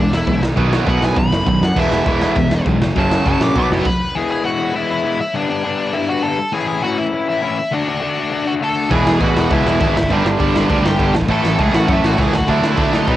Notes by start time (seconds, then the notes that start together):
Already playing: E2 B2 E3 G#3 B3 E4
0.00 D4
0.13 E1 E4, snare
0.27 B1 E2 B2 E3 G#3 B3 E4, kick, ride
0.41 B1 B2 D#3 F#3 B3 D#4, snare
0.56 B1 B2 D#3 F#3 B3, kick, ride
0.73 snare
0.86 B1 B2 D#3 F#3 B3 D#4 F#5, kick, ride
1.02 B1 G#5, snare
1.16 B1 B2 D#3 F#3 B5, kick, ride
1.31 F#1 B2 D#3 F#3 B3 D#4, snare
1.45 B1 B2 D#3 F#3 B5, kick, ride
1.61 F#2 F#5, snare
1.76 E1 E2 B2 E3 G#3 B3 E4, kick, crash
1.80 E5
1.91 E1, snare
2.06 E1 E2 B2 E3 G#3 B3, kick, ride
2.20 E3 G#3 B3 E4, snare
2.36 E1 E2 B2 E3 G#3, kick, ride
2.50 E1, snare
2.66 B1 E2 B2 E3 G#3 B3 E4, kick, ride
2.80 F#1 F#2 C#3 F#3 A#3 C#4, snare
2.96 F#1 F#2 C#3 F#3 A5, kick, ride
3.11 snare
3.25 F#1 F#2 C#3 F#3 A#3 C#4 A5, kick, ride
3.40 A#1 D6, snare
3.55 B1 B2 F#3 B3 D#4 D6, kick, ride
3.70 F#1 F#4 F#5 B5, snare
3.85 B4 B5, kick, crash
4.15 E3 G#3 B3 E4 G#4 G#5
4.31 G#4 G#5
4.44 E3 G#3 B3 E4 F#4 F#5
4.74 E3 G#3 B3 E4 E5
4.91 E4 E5
5.04 E3 G#3 B3 E4
5.21 E4 E5
5.34 G2 D3 G3 B3 D4 D5
5.50 D4 D5
5.63 G2 D3 G3 B3 D4
5.93 G2 D3 G3 B3 D4 E4 E5
6.09 F#4 F#5
6.22 G2 D3 G3 B3 D4 A4 A5
6.52 A2 E3 A3 C#4 E4 G#4 G#5
6.67 G#4 G#5
6.82 A2 E3 A3 C#4 E4 F#4 F#5
6.97 E4 E5
7.11 A2 E3 A3 C#4 E4
7.29 E4 E5
7.42 A2 E3 A3 C#4 E4
7.58 E4 E5
7.71 D3 A3 D4 F#4 D5
7.89 D4 D5
8.00 D3 A3 D4 F#4
8.31 D3 A3 D4 F#4
8.47 F#4 F#5
8.60 D3 A3 D4 F#4 A4 A5
8.89 E1 E2 B2 E3 G#3 B3 E4 G#4 G#5, kick, crash
9.07 E1, snare
9.20 A1 E2 B2 E3 G#3 B3 E4 F#4 G#4, kick, crash
9.24 F#5
9.36 E1, snare
9.50 C#2 E2 B2 E3 G#3 B3 E4 G#4 E5, kick, crash
9.66 E1 E4 E5, snare
9.80 G#1 E2 B2 E3 G#3 B3 E4 G#4 E5, kick, crash
9.96 G1 E4 E5, snare
10.03 kick
10.10 G1 G2 D3 G3 B3 D4 G4 D5, kick, crash
10.25 G1 D4 D5, snare
10.40 G1 G2 D3 G3 B3 D4 G4, kick, crash
10.56 G1, snare
10.69 D2 G2 D3 G3 B3 D4 G4, kick, crash
10.85 G1 G4 G5, snare
10.99 G1 G2 D3 G3 B3 D4 G4, kick, crash
11.15 A1, snare
11.21 kick
11.28 A1 A2 E3 A3 C#4 E4 A4 A5, kick, crash
11.45 A1, snare
11.57 C#2 A2 E3 A3 C#4 E4 G#4, kick, crash
11.62 G#5
11.74 A1 F#4 F#5, snare
11.87 F#2 A2 E3 A3 C#4 E4, kick, crash
11.92 E4 E5
12.03 A1 F#4 F#5, snare
12.16 C#2 A2 E3 A3 C#4 E4, kick, crash
12.21 G#4 G#5
12.33 D2 F#4, snare
12.38 F#5, kick
12.47 D2 D3 F#3 A3 D4 E4 E5, kick, crash
12.62 D2, snare
12.77 D2 D3 F#3 A3 D4, kick, crash
12.93 D2 D#4 D#5, snare
13.07 B1 B2 F#3 B3 D#4, kick, crash